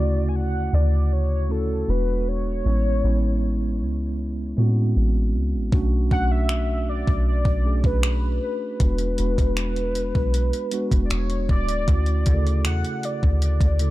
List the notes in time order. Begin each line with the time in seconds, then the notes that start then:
Already playing: D2 C#3 A3 C#4 E4 F#4 D5
0.28 G#5
0.36 F#5
0.73 D2 D5
1.13 C#5
1.49 A3 C#4 E4 F#4 A4
1.87 E1 G#3 B3 D4 F#4 B4
2.28 C#5
2.64 A1 G#3 B3 C#4 E4
3.03 A1 G#3 B3 C#4 E4
3.81 C#2
4.57 A2 G#3 B3 C4 F#4
4.65 C#4
4.96 A1
5.35 C#2
5.54 A1
5.72 B1 A3 C#4 D4 F#4, kick
6.10 B1 A3 C#4 D4 F#4 F#5, kick
6.31 E5
6.49 finger snap
6.89 D5
7.07 B1, kick
7.28 D5
7.45 B1, kick
7.64 A3 C#4 D4 G#4
7.84 B1 B4, kick
8.03 finger snap
8.43 B4
8.80 E1 G#3 B3 D4 F#4, kick, closed hi-hat
8.99 closed hi-hat
9.18 E1 G#3 B3 D4 F#4, closed hi-hat
9.38 kick, closed hi-hat
9.57 finger snap, closed hi-hat
9.76 closed hi-hat
9.95 closed hi-hat
10.15 B1, kick
10.34 closed hi-hat
10.53 closed hi-hat
10.71 G#3 B3 D4 F#4, closed hi-hat
10.92 E1, kick, closed hi-hat
11.05 D5
11.10 E1 C#5, finger snap, closed hi-hat
11.30 closed hi-hat
11.49 D1 D5, kick
11.69 closed hi-hat
11.87 D2 A3 C#4 E4 F#4, kick, closed hi-hat
12.06 closed hi-hat
12.26 D2 C#3 A3 E4 G#4, kick, closed hi-hat
12.34 A4
12.47 closed hi-hat
12.65 E2 F#5, finger snap, closed hi-hat
12.85 closed hi-hat
13.03 D5, closed hi-hat
13.23 D2, kick
13.42 D5, closed hi-hat
13.61 D2, kick, closed hi-hat
13.79 C#3 A3 E4 A4, closed hi-hat